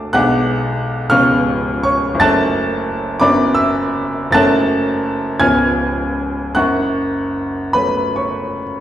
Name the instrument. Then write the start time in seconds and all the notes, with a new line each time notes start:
upright piano
Already playing: D1 D2 F#3 A3 D4 D5 E5 A5 D6 E6
0.13 B1 B2 G#3 D4 F#5 D6 F#6
1.10 C#1 C#2 G#3 B3 C#4 F5 C#6 F6
1.83 C#5 C#6
2.15 F#1
2.20 F#2 F#3 A3 C#4 A5 F#6 A6
3.20 F#1 F#2 F#3 B3 D4 D5 B5 D6
3.54 E5 E6
4.31 F#1 F#2 F#3 A5 F#6 A6
4.35 A3 C#4
5.40 C#1 C#2 F3 B3 C#4 G#5 F6 G#6
6.55 F#1 F#2 F#5 C#6 F#6
7.73 F#3 A3 C#4 B4 B5
8.16 C#5 C#6